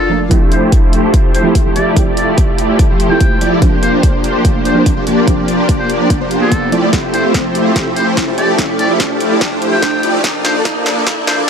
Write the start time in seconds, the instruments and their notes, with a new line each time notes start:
Already playing: 808-style bass F1, harp D4 A#4 D5, muted trumpet A4, analog synth pad D5, swell
0.00 harp F4
0.09 synth pluck F3 A3 A#3 D4 A#4, harp A4
0.21 harp D4
0.29 808-style bass F1, synth pluck F3 A3 C4 E4, supersaw synth F3 A3 E4 G4 C5, analog synth pad G4 E5 A5, kick, closed hi-hat, riser
0.33 synth pluck G4
0.52 muted trumpet C5, closed hi-hat
0.72 kick, closed hi-hat
0.93 closed hi-hat
1.14 kick, closed hi-hat
1.34 muted trumpet C5, closed hi-hat
1.43 synth pluck F3 A3 C4 E4
1.47 synth pluck G4
1.55 kick, closed hi-hat
1.66 808-style bass F1, supersaw synth F3 A3 E4 G4 C5
1.76 808-style bass F1, supersaw synth F3 A3 E4 G4 D5, muted trumpet D5, closed hi-hat
1.94 synth pluck F3 A3 C4 E4, kick, closed hi-hat
1.98 synth pluck G4
2.17 muted trumpet D5, closed hi-hat
2.38 kick, closed hi-hat
2.58 closed hi-hat
2.79 kick, closed hi-hat
2.90 808-style bass F1, supersaw synth F3 A3 E4 G4 C5
3.00 closed hi-hat
3.08 synth pluck F3 A3 C4 E4 G4, muted trumpet G5
3.21 kick, closed hi-hat
3.41 808-style bass F1, supersaw synth F3 A3 E4 G4 D5, closed hi-hat
3.60 808-style bass F1, synth pluck F3 A#3 C4 D4, supersaw synth F3 A#3 D4 G4 C5, analog synth pad A#3 D5 C6, kick, closed hi-hat
3.64 synth pluck G4
3.83 muted trumpet C5, closed hi-hat
4.03 kick, closed hi-hat
4.24 closed hi-hat
4.45 kick, closed hi-hat
4.65 muted trumpet C5, closed hi-hat
4.74 synth pluck F3 A#3 C4 D4
4.78 synth pluck G4
4.86 kick, closed hi-hat
4.97 808-style bass F1, supersaw synth F3 A#3 D4 G4 C5
5.07 808-style bass F1, supersaw synth F3 A#3 D4 G4 D5, closed hi-hat
5.25 synth pluck F3 A#3 C4 D4 G4, kick, closed hi-hat
5.48 closed hi-hat
5.69 kick, closed hi-hat
5.79 muted trumpet C5
5.90 closed hi-hat
6.10 kick, closed hi-hat
6.21 808-style bass F1, supersaw synth F3 A#3 D4 G4 C5
6.31 closed hi-hat
6.41 muted trumpet A4
6.52 kick, closed hi-hat
6.71 808-style bass F1, synth pluck F3 A3 C4 E4 A4, supersaw synth F3 A3 E4 G4 D5, analog synth pad A4 G5 E6, closed hi-hat
6.93 808-style bass F1, supersaw synth F3 A3 E4 G4 C5, harp E4, kick, snare, closed hi-hat
7.14 harp E4, muted trumpet C5, closed hi-hat
7.24 harp C5
7.34 kick, snare, closed hi-hat
7.45 harp A4
7.55 harp G4, closed hi-hat
7.66 harp A4
7.76 harp E4, kick, snare, closed hi-hat
7.96 harp E4, muted trumpet C5, closed hi-hat
8.07 harp C5
8.17 kick, snare, closed hi-hat
8.28 808-style bass F1, supersaw synth F3 A3 E4 G4 C5, harp A4
8.38 808-style bass F1, supersaw synth F3 A3 E4 G4 D5, harp G4, muted trumpet D5, analog synth pad F6, closed hi-hat
8.48 harp A4
8.58 harp E4, kick, snare, closed hi-hat
8.79 harp E4, muted trumpet D5, closed hi-hat
8.90 harp C5
9.00 kick, snare, closed hi-hat
9.10 harp A4
9.21 harp G4, closed hi-hat
9.31 harp A4
9.41 harp E4, kick, snare, closed hi-hat
9.52 808-style bass F1, supersaw synth F3 A3 E4 G4 C5
9.62 harp E4, closed hi-hat
9.72 harp C5, muted trumpet G5
9.82 kick, snare, closed hi-hat
9.93 harp A4
10.03 808-style bass F1, supersaw synth F3 A3 E4 G4 D5, harp G4, closed hi-hat
10.14 harp A4
10.24 supersaw synth F3 A#3 D4 A4 D5, analog synth pad A#3 F5 A5 D6, harp D4, kick, snare, closed hi-hat
10.44 harp D4, muted trumpet C5, snare, closed hi-hat
10.55 harp D5
10.65 kick, snare, closed hi-hat
10.76 harp A#4
10.86 harp A4, snare, closed hi-hat
10.96 harp A#4
11.07 kick, snare, closed hi-hat
11.27 harp D4, muted trumpet C5, snare, closed hi-hat
11.38 harp D5